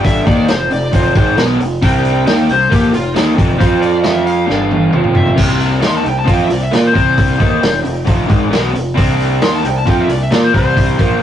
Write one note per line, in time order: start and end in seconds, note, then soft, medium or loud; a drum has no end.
0.00 0.24 G1 medium
0.00 0.25 G2 medium
0.00 0.25 D3 loud
0.00 0.25 G3 medium
0.00 0.25 B3 medium
0.00 0.26 D4 medium
0.00 0.25 F4 medium
0.00 0.23 A4 medium
0.04 0.26 E5 medium
0.04 kick loud
0.04 open hi-hat medium
0.23 0.48 D#3 medium
0.23 0.48 A#3 loud
0.23 1.06 C4 medium
0.23 1.07 D#4 medium
0.23 0.48 D#4 medium
0.23 1.07 G4 medium
0.23 1.07 A4 medium
0.27 0.47 D#2 loud
0.27 0.49 D5 loud
0.27 kick loud
0.27 open hi-hat soft
0.48 0.69 F1 medium
0.48 0.67 F2 medium
0.48 0.67 C3 medium
0.48 0.71 C5 loud
0.48 snare loud
0.48 open hi-hat medium
0.70 0.92 F1 medium
0.70 0.89 F2 medium
0.70 0.89 C3 medium
0.70 0.93 D5 loud
0.70 open hi-hat medium
0.92 1.14 F1 medium
0.92 1.14 F2 loud
0.92 1.15 C3 medium
0.92 1.15 F3 medium
0.92 1.15 C5 medium
0.92 kick loud
0.92 open hi-hat medium
1.15 1.36 G#1 loud
1.15 1.37 G#2 medium
1.15 1.36 D#3 medium
1.15 1.37 G#3 medium
1.15 1.38 C5 medium
1.15 kick loud
1.15 open hi-hat medium
1.36 1.58 B1 loud
1.36 1.59 B2 medium
1.36 1.59 F#3 medium
1.36 1.59 B3 loud
1.36 snare loud
1.36 open hi-hat medium
1.59 1.80 F1 medium
1.59 1.77 F2 medium
1.59 1.78 C3 medium
1.59 open hi-hat medium
1.82 2.24 C2 loud
1.82 2.26 C3 medium
1.82 2.26 G3 loud
1.82 2.26 C4 medium
1.82 2.23 D4 medium
1.82 2.24 E4 medium
1.82 2.24 G4 medium
1.82 2.23 A#4 medium
1.82 2.26 G5 loud
1.82 kick loud
1.82 open hi-hat medium
2.05 open hi-hat medium
2.26 2.48 D#2 loud
2.26 2.48 D#3 medium
2.26 2.48 A#3 loud
2.26 2.71 D4 medium
2.26 2.49 D#4 loud
2.26 2.71 E4 medium
2.26 2.70 G4 medium
2.26 2.72 A#4 medium
2.26 2.48 G5 loud
2.26 snare loud
2.26 open hi-hat medium
2.49 2.70 C2 medium
2.49 2.67 C3 medium
2.49 2.67 G3 medium
2.49 2.72 C5 loud
2.49 open hi-hat medium
2.69 2.92 A#1 medium
2.69 2.92 A#2 medium
2.69 2.92 F3 medium
2.69 2.92 A#3 medium
2.69 3.53 C4 medium
2.69 3.53 D#4 medium
2.69 3.53 G4 medium
2.69 2.93 G4 medium
2.69 3.54 A4 medium
2.69 kick loud
2.69 open hi-hat medium
2.92 3.14 F1 medium
2.92 3.10 F2 medium
2.92 3.11 C3 medium
2.92 3.16 F4 medium
2.92 open hi-hat medium
3.14 3.37 D#2 loud
3.14 3.34 D#3 medium
3.14 3.35 A#3 medium
3.14 3.37 D#4 medium
3.14 snare loud
3.14 open hi-hat medium
3.34 3.59 F1 loud
3.34 3.58 F2 loud
3.34 3.57 C3 loud
3.34 3.56 F3 loud
3.34 kick loud
3.39 open hi-hat medium
3.57 4.46 F2 loud
3.57 4.00 F3 medium
3.57 4.47 F3 medium
3.57 4.00 C4 medium
3.57 4.47 C4 medium
3.57 4.00 F4 medium
3.57 4.48 F4 loud
3.57 4.01 C5 medium
3.57 3.82 C5 medium
3.57 kick loud
3.57 open hi-hat medium
3.82 4.04 D5 medium
3.82 open hi-hat medium
4.02 4.48 F3 medium
4.02 4.48 C4 medium
4.02 4.48 F4 medium
4.02 4.49 C5 medium
4.02 4.26 E5 loud
4.02 snare loud
4.02 open hi-hat medium
4.26 5.13 F5 loud
4.26 open hi-hat medium
4.46 4.91 G1 medium
4.46 4.91 G2 medium
4.46 4.91 D3 medium
4.46 4.92 G3 medium
4.46 4.90 B3 medium
4.46 4.91 D4 medium
4.46 4.91 F4 medium
4.46 4.91 A4 medium
4.46 snare medium
4.71 high tom medium
4.91 5.35 F1 loud
4.91 5.37 F2 medium
4.91 5.34 C3 medium
4.91 5.35 F3 medium
4.91 5.35 C4 medium
4.91 5.35 F4 medium
4.91 5.35 C5 medium
4.91 mid tom medium
5.04 mid tom medium
5.15 5.39 E5 loud
5.15 floor tom loud
5.27 floor tom medium
5.35 5.80 C2 loud
5.35 5.80 C3 medium
5.35 5.81 G3 medium
5.35 5.77 A#3 medium
5.35 5.82 C4 medium
5.35 5.76 D4 medium
5.35 5.77 E4 medium
5.35 5.78 G4 medium
5.35 kick loud
5.35 crash loud
5.61 open hi-hat medium
5.77 6.03 D#3 medium
5.77 6.63 A#3 medium
5.77 6.03 A#3 medium
5.77 6.63 D4 medium
5.77 6.63 E4 medium
5.77 6.64 G4 medium
5.82 6.04 D#2 medium
5.82 6.05 D#4 loud
5.82 snare loud
5.82 open hi-hat medium
5.87 5.96 C6 loud
5.97 6.07 A5 medium
6.03 6.26 C2 medium
6.03 6.23 C3 medium
6.03 6.23 G3 medium
6.03 open hi-hat medium
6.09 6.18 G5 loud
6.19 6.29 A5 loud
6.24 6.49 F2 medium
6.24 6.48 F3 medium
6.24 6.48 C4 medium
6.24 6.49 F4 loud
6.24 kick loud
6.24 open hi-hat medium
6.33 6.42 G5 medium
6.43 6.52 E5 medium
6.49 6.71 C2 medium
6.49 6.68 C3 medium
6.49 6.68 G3 medium
6.49 6.63 D5 medium
6.49 open hi-hat medium
6.63 6.74 E5 medium
6.71 6.93 A#2 loud
6.71 6.93 A#3 medium
6.71 6.93 F4 medium
6.71 6.94 A#4 medium
6.71 snare loud
6.71 open hi-hat medium
6.75 6.85 D5 loud
6.87 6.94 C5 medium
6.92 7.37 C2 medium
6.92 7.37 C3 medium
6.92 7.38 G3 medium
6.92 7.38 C4 medium
6.92 7.82 C5 loud
6.92 kick loud
6.92 open hi-hat medium
7.14 7.39 A#3 medium
7.14 7.39 D4 medium
7.14 7.40 E4 medium
7.14 7.38 G4 medium
7.14 kick loud
7.18 open hi-hat medium
7.37 7.62 D#2 medium
7.37 7.61 D#3 medium
7.37 8.22 A3 medium
7.37 7.61 A#3 medium
7.37 8.22 C4 medium
7.37 7.61 D#4 medium
7.37 8.23 D#4 medium
7.37 8.22 G4 medium
7.37 kick loud
7.37 open hi-hat soft
7.61 7.83 F1 medium
7.61 7.80 F2 medium
7.61 7.80 C3 medium
7.61 snare loud
7.61 open hi-hat medium
7.83 8.06 F1 medium
7.83 8.02 F2 medium
7.83 8.02 C3 medium
7.83 open hi-hat medium
8.05 8.28 F1 medium
8.05 8.26 F2 medium
8.05 8.26 C3 medium
8.05 8.27 F3 medium
8.05 kick loud
8.05 open hi-hat medium
8.26 8.51 G#1 loud
8.26 8.50 G#2 medium
8.26 8.49 D#3 medium
8.26 8.50 G#3 medium
8.26 kick loud
8.26 open hi-hat medium
8.49 8.73 B1 loud
8.49 8.72 B2 medium
8.49 8.73 F#3 medium
8.49 8.74 B3 medium
8.49 open hi-hat medium
8.53 snare medium
8.72 8.96 F1 medium
8.72 8.92 F2 medium
8.72 8.92 C3 medium
8.72 open hi-hat medium
8.94 9.39 C2 loud
8.94 9.40 C3 medium
8.94 9.40 G3 medium
8.94 9.37 A#3 medium
8.94 9.41 C4 loud
8.94 9.38 D4 medium
8.94 9.38 E4 medium
8.94 9.39 G4 loud
8.94 kick loud
8.94 open hi-hat medium
9.20 open hi-hat medium
9.41 9.63 D#2 medium
9.41 9.62 D#3 loud
9.41 10.24 A#3 medium
9.41 9.63 A#3 loud
9.41 10.25 D4 medium
9.41 9.64 D#4 loud
9.41 10.24 E4 medium
9.41 10.25 A#4 medium
9.41 9.54 C6 loud
9.41 snare loud
9.41 open hi-hat medium
9.55 9.65 A5 loud
9.62 9.85 C2 medium
9.62 9.81 C3 medium
9.62 9.82 G3 medium
9.62 open hi-hat medium
9.67 9.77 G5 loud
9.78 9.88 A5 medium
9.85 10.07 F2 medium
9.85 10.08 F3 medium
9.85 10.08 C4 medium
9.85 10.09 F4 loud
9.85 kick medium
9.85 open hi-hat medium
9.90 9.99 G5 medium
10.00 10.10 E5 medium
10.08 10.29 C2 medium
10.08 10.27 C3 medium
10.08 10.27 G3 medium
10.08 10.21 D5 medium
10.08 open hi-hat medium
10.23 10.33 E5 medium
10.31 10.52 A#2 loud
10.31 10.53 A#3 medium
10.31 10.53 F4 medium
10.31 10.53 A#4 medium
10.31 snare loud
10.31 open hi-hat medium
10.35 10.44 D5 medium
10.44 10.53 C5 medium
10.53 10.96 C2 medium
10.53 10.97 C3 medium
10.53 10.98 G3 loud
10.53 10.98 C4 loud
10.53 11.22 C5 loud
10.53 kick loud
10.53 open hi-hat medium
10.74 11.16 A#3 medium
10.74 11.15 D4 medium
10.74 11.17 E4 medium
10.74 11.17 G4 medium
10.74 kick loud
10.74 open hi-hat medium
10.98 11.20 A#1 loud
10.98 11.20 A#2 medium
10.98 11.20 F3 medium
10.98 11.21 A#3 medium
10.98 kick loud
10.98 open hi-hat medium
11.16 11.22 A#3 medium
11.16 11.22 D4 medium
11.16 11.22 E4 medium
11.16 11.22 A#4 medium